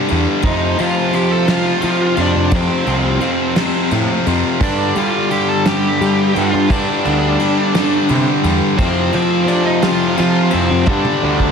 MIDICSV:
0, 0, Header, 1, 5, 480
1, 0, Start_track
1, 0, Tempo, 696056
1, 304, Time_signature, 6, 3, 24, 8
1, 7941, End_track
2, 0, Start_track
2, 0, Title_t, "Lead electric guitar"
2, 0, Program_c, 0, 29
2, 308, Note_on_c, 0, 63, 75
2, 311, Note_on_c, 0, 75, 81
2, 530, Note_off_c, 0, 63, 0
2, 553, Note_off_c, 0, 75, 0
2, 559, Note_on_c, 0, 77, 95
2, 562, Note_on_c, 0, 65, 67
2, 777, Note_off_c, 0, 65, 0
2, 790, Note_on_c, 0, 67, 79
2, 793, Note_on_c, 0, 79, 83
2, 798, Note_off_c, 0, 77, 0
2, 899, Note_off_c, 0, 67, 0
2, 905, Note_on_c, 0, 69, 83
2, 913, Note_off_c, 0, 79, 0
2, 913, Note_on_c, 0, 81, 116
2, 1016, Note_off_c, 0, 69, 0
2, 1023, Note_on_c, 0, 65, 84
2, 1024, Note_on_c, 0, 77, 94
2, 1031, Note_off_c, 0, 81, 0
2, 1475, Note_off_c, 0, 65, 0
2, 1516, Note_off_c, 0, 77, 0
2, 1518, Note_on_c, 0, 62, 70
2, 1524, Note_on_c, 0, 74, 92
2, 1734, Note_off_c, 0, 62, 0
2, 1757, Note_on_c, 0, 60, 67
2, 1760, Note_off_c, 0, 74, 0
2, 1762, Note_on_c, 0, 72, 64
2, 2682, Note_off_c, 0, 60, 0
2, 2682, Note_off_c, 0, 72, 0
2, 3193, Note_on_c, 0, 62, 64
2, 3197, Note_on_c, 0, 74, 74
2, 3411, Note_off_c, 0, 62, 0
2, 3411, Note_off_c, 0, 74, 0
2, 3427, Note_on_c, 0, 77, 81
2, 3432, Note_on_c, 0, 65, 62
2, 3650, Note_off_c, 0, 65, 0
2, 3657, Note_off_c, 0, 77, 0
2, 3660, Note_on_c, 0, 79, 99
2, 3665, Note_on_c, 0, 67, 77
2, 3775, Note_off_c, 0, 67, 0
2, 3784, Note_off_c, 0, 79, 0
2, 3784, Note_on_c, 0, 81, 107
2, 3789, Note_on_c, 0, 69, 81
2, 3896, Note_off_c, 0, 69, 0
2, 3905, Note_off_c, 0, 81, 0
2, 3908, Note_on_c, 0, 79, 113
2, 3911, Note_on_c, 0, 67, 82
2, 4358, Note_off_c, 0, 67, 0
2, 4398, Note_off_c, 0, 79, 0
2, 4408, Note_on_c, 0, 65, 74
2, 4410, Note_on_c, 0, 77, 91
2, 4618, Note_off_c, 0, 77, 0
2, 4619, Note_off_c, 0, 65, 0
2, 4626, Note_on_c, 0, 62, 57
2, 4633, Note_on_c, 0, 74, 77
2, 5555, Note_off_c, 0, 62, 0
2, 5559, Note_off_c, 0, 74, 0
2, 6055, Note_on_c, 0, 72, 88
2, 6059, Note_on_c, 0, 60, 65
2, 6283, Note_off_c, 0, 60, 0
2, 6300, Note_off_c, 0, 72, 0
2, 6309, Note_on_c, 0, 72, 75
2, 6312, Note_on_c, 0, 60, 59
2, 6528, Note_off_c, 0, 72, 0
2, 6529, Note_off_c, 0, 60, 0
2, 6537, Note_on_c, 0, 74, 110
2, 6543, Note_on_c, 0, 62, 80
2, 6653, Note_off_c, 0, 62, 0
2, 6662, Note_off_c, 0, 74, 0
2, 6663, Note_on_c, 0, 63, 74
2, 6665, Note_on_c, 0, 75, 93
2, 6773, Note_off_c, 0, 63, 0
2, 6776, Note_off_c, 0, 75, 0
2, 6777, Note_on_c, 0, 65, 90
2, 6779, Note_on_c, 0, 77, 102
2, 7003, Note_off_c, 0, 65, 0
2, 7015, Note_off_c, 0, 77, 0
2, 7022, Note_on_c, 0, 65, 82
2, 7025, Note_on_c, 0, 77, 83
2, 7244, Note_on_c, 0, 60, 63
2, 7245, Note_off_c, 0, 65, 0
2, 7246, Note_on_c, 0, 72, 77
2, 7269, Note_off_c, 0, 77, 0
2, 7476, Note_off_c, 0, 60, 0
2, 7496, Note_on_c, 0, 62, 73
2, 7500, Note_off_c, 0, 72, 0
2, 7502, Note_on_c, 0, 74, 76
2, 7941, Note_off_c, 0, 62, 0
2, 7941, Note_off_c, 0, 74, 0
2, 7941, End_track
3, 0, Start_track
3, 0, Title_t, "Distorted electric guitar"
3, 0, Program_c, 1, 30
3, 56, Note_on_c, 1, 43, 76
3, 63, Note_on_c, 1, 50, 95
3, 63, Note_on_c, 1, 55, 84
3, 285, Note_off_c, 1, 43, 0
3, 289, Note_off_c, 1, 50, 0
3, 289, Note_off_c, 1, 55, 0
3, 291, Note_on_c, 1, 41, 95
3, 297, Note_on_c, 1, 48, 96
3, 301, Note_on_c, 1, 53, 102
3, 530, Note_off_c, 1, 41, 0
3, 533, Note_off_c, 1, 48, 0
3, 533, Note_on_c, 1, 41, 92
3, 540, Note_off_c, 1, 53, 0
3, 541, Note_on_c, 1, 48, 94
3, 543, Note_on_c, 1, 53, 104
3, 773, Note_off_c, 1, 41, 0
3, 774, Note_off_c, 1, 48, 0
3, 776, Note_on_c, 1, 41, 72
3, 782, Note_on_c, 1, 48, 89
3, 783, Note_off_c, 1, 53, 0
3, 786, Note_on_c, 1, 53, 81
3, 1000, Note_off_c, 1, 41, 0
3, 1007, Note_off_c, 1, 48, 0
3, 1008, Note_on_c, 1, 41, 90
3, 1015, Note_on_c, 1, 48, 82
3, 1017, Note_off_c, 1, 53, 0
3, 1020, Note_on_c, 1, 53, 96
3, 1248, Note_off_c, 1, 41, 0
3, 1255, Note_off_c, 1, 48, 0
3, 1257, Note_on_c, 1, 41, 80
3, 1263, Note_on_c, 1, 48, 89
3, 1264, Note_off_c, 1, 53, 0
3, 1267, Note_on_c, 1, 53, 97
3, 1487, Note_off_c, 1, 41, 0
3, 1491, Note_off_c, 1, 48, 0
3, 1496, Note_on_c, 1, 41, 87
3, 1499, Note_on_c, 1, 48, 94
3, 1500, Note_off_c, 1, 53, 0
3, 1503, Note_on_c, 1, 53, 95
3, 1724, Note_off_c, 1, 41, 0
3, 1731, Note_off_c, 1, 48, 0
3, 1732, Note_on_c, 1, 41, 98
3, 1739, Note_off_c, 1, 53, 0
3, 1739, Note_on_c, 1, 48, 88
3, 1742, Note_on_c, 1, 53, 102
3, 1959, Note_off_c, 1, 41, 0
3, 1965, Note_off_c, 1, 48, 0
3, 1967, Note_on_c, 1, 41, 102
3, 1973, Note_on_c, 1, 48, 91
3, 1975, Note_off_c, 1, 53, 0
3, 1978, Note_on_c, 1, 53, 103
3, 2199, Note_off_c, 1, 41, 0
3, 2202, Note_off_c, 1, 48, 0
3, 2208, Note_on_c, 1, 41, 78
3, 2210, Note_on_c, 1, 48, 82
3, 2213, Note_off_c, 1, 53, 0
3, 2216, Note_on_c, 1, 53, 88
3, 2448, Note_off_c, 1, 41, 0
3, 2453, Note_off_c, 1, 48, 0
3, 2456, Note_on_c, 1, 41, 88
3, 2461, Note_on_c, 1, 48, 94
3, 2462, Note_off_c, 1, 53, 0
3, 2465, Note_on_c, 1, 53, 95
3, 2689, Note_off_c, 1, 41, 0
3, 2694, Note_off_c, 1, 48, 0
3, 2697, Note_on_c, 1, 41, 78
3, 2702, Note_off_c, 1, 53, 0
3, 2703, Note_on_c, 1, 48, 76
3, 2705, Note_on_c, 1, 53, 89
3, 2931, Note_off_c, 1, 41, 0
3, 2936, Note_off_c, 1, 48, 0
3, 2939, Note_on_c, 1, 41, 82
3, 2944, Note_on_c, 1, 48, 84
3, 2945, Note_off_c, 1, 53, 0
3, 2947, Note_on_c, 1, 53, 84
3, 3165, Note_off_c, 1, 41, 0
3, 3168, Note_off_c, 1, 48, 0
3, 3174, Note_on_c, 1, 43, 87
3, 3179, Note_on_c, 1, 50, 95
3, 3180, Note_off_c, 1, 53, 0
3, 3183, Note_on_c, 1, 55, 94
3, 3417, Note_off_c, 1, 50, 0
3, 3418, Note_off_c, 1, 43, 0
3, 3420, Note_on_c, 1, 43, 93
3, 3425, Note_on_c, 1, 50, 100
3, 3426, Note_off_c, 1, 55, 0
3, 3429, Note_on_c, 1, 55, 104
3, 3656, Note_off_c, 1, 43, 0
3, 3656, Note_off_c, 1, 50, 0
3, 3659, Note_on_c, 1, 43, 83
3, 3665, Note_on_c, 1, 50, 83
3, 3666, Note_off_c, 1, 55, 0
3, 3669, Note_on_c, 1, 55, 83
3, 3890, Note_off_c, 1, 43, 0
3, 3894, Note_off_c, 1, 50, 0
3, 3898, Note_on_c, 1, 43, 80
3, 3899, Note_off_c, 1, 55, 0
3, 3903, Note_on_c, 1, 50, 91
3, 3907, Note_on_c, 1, 55, 96
3, 4127, Note_off_c, 1, 43, 0
3, 4131, Note_off_c, 1, 50, 0
3, 4134, Note_off_c, 1, 55, 0
3, 4135, Note_on_c, 1, 43, 79
3, 4139, Note_on_c, 1, 50, 81
3, 4142, Note_on_c, 1, 55, 86
3, 4370, Note_off_c, 1, 43, 0
3, 4371, Note_off_c, 1, 50, 0
3, 4377, Note_off_c, 1, 55, 0
3, 4378, Note_on_c, 1, 43, 76
3, 4379, Note_on_c, 1, 50, 85
3, 4385, Note_on_c, 1, 55, 76
3, 4608, Note_off_c, 1, 43, 0
3, 4615, Note_off_c, 1, 50, 0
3, 4616, Note_on_c, 1, 43, 97
3, 4617, Note_off_c, 1, 55, 0
3, 4623, Note_on_c, 1, 50, 104
3, 4625, Note_on_c, 1, 55, 110
3, 4850, Note_off_c, 1, 43, 0
3, 4853, Note_off_c, 1, 50, 0
3, 4854, Note_off_c, 1, 55, 0
3, 4858, Note_on_c, 1, 43, 87
3, 4862, Note_on_c, 1, 50, 88
3, 4862, Note_on_c, 1, 55, 110
3, 5093, Note_off_c, 1, 43, 0
3, 5096, Note_off_c, 1, 50, 0
3, 5101, Note_off_c, 1, 55, 0
3, 5102, Note_on_c, 1, 43, 86
3, 5105, Note_on_c, 1, 50, 88
3, 5109, Note_on_c, 1, 55, 86
3, 5322, Note_off_c, 1, 43, 0
3, 5328, Note_off_c, 1, 50, 0
3, 5331, Note_on_c, 1, 43, 94
3, 5334, Note_off_c, 1, 55, 0
3, 5336, Note_on_c, 1, 50, 92
3, 5342, Note_on_c, 1, 55, 98
3, 5563, Note_off_c, 1, 43, 0
3, 5570, Note_off_c, 1, 50, 0
3, 5571, Note_on_c, 1, 43, 93
3, 5574, Note_off_c, 1, 55, 0
3, 5579, Note_on_c, 1, 50, 90
3, 5582, Note_on_c, 1, 55, 87
3, 5796, Note_off_c, 1, 43, 0
3, 5804, Note_on_c, 1, 43, 83
3, 5806, Note_off_c, 1, 50, 0
3, 5808, Note_off_c, 1, 55, 0
3, 5815, Note_on_c, 1, 50, 92
3, 5816, Note_on_c, 1, 55, 98
3, 6037, Note_off_c, 1, 43, 0
3, 6043, Note_off_c, 1, 50, 0
3, 6043, Note_off_c, 1, 55, 0
3, 6049, Note_on_c, 1, 41, 105
3, 6056, Note_on_c, 1, 48, 91
3, 6056, Note_on_c, 1, 53, 101
3, 6278, Note_off_c, 1, 41, 0
3, 6283, Note_off_c, 1, 48, 0
3, 6286, Note_off_c, 1, 53, 0
3, 6286, Note_on_c, 1, 41, 96
3, 6291, Note_on_c, 1, 48, 99
3, 6295, Note_on_c, 1, 53, 110
3, 6515, Note_off_c, 1, 41, 0
3, 6522, Note_off_c, 1, 48, 0
3, 6524, Note_on_c, 1, 41, 88
3, 6525, Note_off_c, 1, 53, 0
3, 6530, Note_on_c, 1, 48, 93
3, 6533, Note_on_c, 1, 53, 87
3, 6751, Note_off_c, 1, 41, 0
3, 6754, Note_off_c, 1, 48, 0
3, 6759, Note_on_c, 1, 41, 88
3, 6762, Note_off_c, 1, 53, 0
3, 6762, Note_on_c, 1, 48, 104
3, 6770, Note_on_c, 1, 53, 99
3, 6998, Note_off_c, 1, 41, 0
3, 7002, Note_off_c, 1, 48, 0
3, 7006, Note_off_c, 1, 53, 0
3, 7006, Note_on_c, 1, 41, 92
3, 7010, Note_on_c, 1, 48, 85
3, 7014, Note_on_c, 1, 53, 86
3, 7242, Note_off_c, 1, 41, 0
3, 7249, Note_off_c, 1, 48, 0
3, 7249, Note_off_c, 1, 53, 0
3, 7250, Note_on_c, 1, 41, 78
3, 7257, Note_on_c, 1, 53, 89
3, 7258, Note_on_c, 1, 48, 89
3, 7481, Note_off_c, 1, 41, 0
3, 7485, Note_off_c, 1, 48, 0
3, 7485, Note_off_c, 1, 53, 0
3, 7494, Note_on_c, 1, 43, 110
3, 7498, Note_on_c, 1, 50, 99
3, 7500, Note_on_c, 1, 55, 102
3, 7730, Note_off_c, 1, 43, 0
3, 7735, Note_off_c, 1, 50, 0
3, 7738, Note_on_c, 1, 43, 101
3, 7739, Note_off_c, 1, 55, 0
3, 7743, Note_on_c, 1, 50, 96
3, 7747, Note_on_c, 1, 55, 103
3, 7941, Note_off_c, 1, 43, 0
3, 7941, Note_off_c, 1, 50, 0
3, 7941, Note_off_c, 1, 55, 0
3, 7941, End_track
4, 0, Start_track
4, 0, Title_t, "Picked electric bass"
4, 0, Program_c, 2, 34
4, 77, Note_on_c, 2, 40, 101
4, 176, Note_off_c, 2, 40, 0
4, 303, Note_on_c, 2, 41, 108
4, 511, Note_off_c, 2, 41, 0
4, 551, Note_on_c, 2, 53, 108
4, 1172, Note_off_c, 2, 53, 0
4, 1265, Note_on_c, 2, 53, 78
4, 1472, Note_off_c, 2, 53, 0
4, 1500, Note_on_c, 2, 41, 83
4, 1605, Note_off_c, 2, 41, 0
4, 1626, Note_on_c, 2, 41, 92
4, 1729, Note_off_c, 2, 41, 0
4, 1739, Note_on_c, 2, 41, 108
4, 1844, Note_off_c, 2, 41, 0
4, 1978, Note_on_c, 2, 36, 94
4, 2188, Note_off_c, 2, 36, 0
4, 2701, Note_on_c, 2, 45, 75
4, 2805, Note_off_c, 2, 45, 0
4, 2943, Note_on_c, 2, 41, 94
4, 3046, Note_off_c, 2, 41, 0
4, 3178, Note_on_c, 2, 43, 109
4, 3387, Note_off_c, 2, 43, 0
4, 3422, Note_on_c, 2, 55, 102
4, 4046, Note_off_c, 2, 55, 0
4, 4145, Note_on_c, 2, 55, 89
4, 4351, Note_off_c, 2, 55, 0
4, 4389, Note_on_c, 2, 43, 82
4, 4489, Note_off_c, 2, 43, 0
4, 4510, Note_on_c, 2, 43, 83
4, 4610, Note_off_c, 2, 43, 0
4, 4624, Note_on_c, 2, 43, 116
4, 4726, Note_off_c, 2, 43, 0
4, 4870, Note_on_c, 2, 38, 90
4, 5074, Note_off_c, 2, 38, 0
4, 5587, Note_on_c, 2, 48, 84
4, 5688, Note_off_c, 2, 48, 0
4, 5820, Note_on_c, 2, 40, 103
4, 5924, Note_off_c, 2, 40, 0
4, 6063, Note_on_c, 2, 41, 99
4, 6270, Note_off_c, 2, 41, 0
4, 6306, Note_on_c, 2, 53, 108
4, 6928, Note_off_c, 2, 53, 0
4, 7030, Note_on_c, 2, 53, 85
4, 7234, Note_off_c, 2, 53, 0
4, 7267, Note_on_c, 2, 41, 84
4, 7368, Note_off_c, 2, 41, 0
4, 7386, Note_on_c, 2, 41, 89
4, 7488, Note_off_c, 2, 41, 0
4, 7496, Note_on_c, 2, 43, 109
4, 7602, Note_off_c, 2, 43, 0
4, 7746, Note_on_c, 2, 38, 94
4, 7941, Note_off_c, 2, 38, 0
4, 7941, End_track
5, 0, Start_track
5, 0, Title_t, "Drums"
5, 57, Note_on_c, 9, 51, 70
5, 126, Note_off_c, 9, 51, 0
5, 291, Note_on_c, 9, 51, 93
5, 300, Note_on_c, 9, 36, 127
5, 360, Note_off_c, 9, 51, 0
5, 369, Note_off_c, 9, 36, 0
5, 540, Note_on_c, 9, 51, 75
5, 609, Note_off_c, 9, 51, 0
5, 781, Note_on_c, 9, 51, 68
5, 850, Note_off_c, 9, 51, 0
5, 1019, Note_on_c, 9, 51, 91
5, 1021, Note_on_c, 9, 38, 101
5, 1088, Note_off_c, 9, 51, 0
5, 1090, Note_off_c, 9, 38, 0
5, 1252, Note_on_c, 9, 51, 84
5, 1321, Note_off_c, 9, 51, 0
5, 1494, Note_on_c, 9, 51, 69
5, 1563, Note_off_c, 9, 51, 0
5, 1733, Note_on_c, 9, 51, 98
5, 1737, Note_on_c, 9, 36, 119
5, 1802, Note_off_c, 9, 51, 0
5, 1806, Note_off_c, 9, 36, 0
5, 1976, Note_on_c, 9, 51, 64
5, 2045, Note_off_c, 9, 51, 0
5, 2213, Note_on_c, 9, 51, 70
5, 2282, Note_off_c, 9, 51, 0
5, 2454, Note_on_c, 9, 51, 106
5, 2456, Note_on_c, 9, 38, 109
5, 2523, Note_off_c, 9, 51, 0
5, 2525, Note_off_c, 9, 38, 0
5, 2696, Note_on_c, 9, 51, 85
5, 2765, Note_off_c, 9, 51, 0
5, 2940, Note_on_c, 9, 51, 80
5, 3009, Note_off_c, 9, 51, 0
5, 3177, Note_on_c, 9, 36, 125
5, 3180, Note_on_c, 9, 49, 101
5, 3246, Note_off_c, 9, 36, 0
5, 3249, Note_off_c, 9, 49, 0
5, 3418, Note_on_c, 9, 51, 82
5, 3487, Note_off_c, 9, 51, 0
5, 3660, Note_on_c, 9, 51, 78
5, 3729, Note_off_c, 9, 51, 0
5, 3900, Note_on_c, 9, 51, 104
5, 3902, Note_on_c, 9, 38, 119
5, 3969, Note_off_c, 9, 51, 0
5, 3971, Note_off_c, 9, 38, 0
5, 4149, Note_on_c, 9, 51, 80
5, 4218, Note_off_c, 9, 51, 0
5, 4386, Note_on_c, 9, 51, 66
5, 4454, Note_off_c, 9, 51, 0
5, 4621, Note_on_c, 9, 36, 105
5, 4623, Note_on_c, 9, 51, 104
5, 4689, Note_off_c, 9, 36, 0
5, 4692, Note_off_c, 9, 51, 0
5, 4861, Note_on_c, 9, 51, 74
5, 4930, Note_off_c, 9, 51, 0
5, 5100, Note_on_c, 9, 51, 74
5, 5169, Note_off_c, 9, 51, 0
5, 5343, Note_on_c, 9, 51, 100
5, 5345, Note_on_c, 9, 38, 115
5, 5412, Note_off_c, 9, 51, 0
5, 5414, Note_off_c, 9, 38, 0
5, 5577, Note_on_c, 9, 51, 74
5, 5646, Note_off_c, 9, 51, 0
5, 5821, Note_on_c, 9, 51, 76
5, 5890, Note_off_c, 9, 51, 0
5, 6059, Note_on_c, 9, 36, 118
5, 6059, Note_on_c, 9, 51, 104
5, 6128, Note_off_c, 9, 36, 0
5, 6128, Note_off_c, 9, 51, 0
5, 6293, Note_on_c, 9, 51, 71
5, 6362, Note_off_c, 9, 51, 0
5, 6535, Note_on_c, 9, 51, 68
5, 6604, Note_off_c, 9, 51, 0
5, 6775, Note_on_c, 9, 51, 100
5, 6777, Note_on_c, 9, 38, 125
5, 6844, Note_off_c, 9, 51, 0
5, 6846, Note_off_c, 9, 38, 0
5, 7016, Note_on_c, 9, 51, 88
5, 7085, Note_off_c, 9, 51, 0
5, 7246, Note_on_c, 9, 51, 76
5, 7315, Note_off_c, 9, 51, 0
5, 7489, Note_on_c, 9, 48, 71
5, 7497, Note_on_c, 9, 36, 112
5, 7557, Note_off_c, 9, 48, 0
5, 7565, Note_off_c, 9, 36, 0
5, 7617, Note_on_c, 9, 48, 58
5, 7686, Note_off_c, 9, 48, 0
5, 7859, Note_on_c, 9, 36, 64
5, 7928, Note_off_c, 9, 36, 0
5, 7941, End_track
0, 0, End_of_file